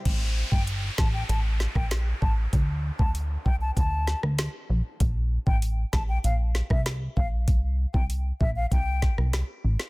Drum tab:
CC |x---------------|----------------|----------------|----------------|
HH |x---x---x---x---|x---x---x---x---|x---x---x---x---|x---x---x---x---|
SD |------o---oro---|----------oro---|------o---oro---|----------oro--o|
BD |o--o--o----o--o-|o--o--o-o-------|o--o--o----o--o-|o--o--o-o-o-----|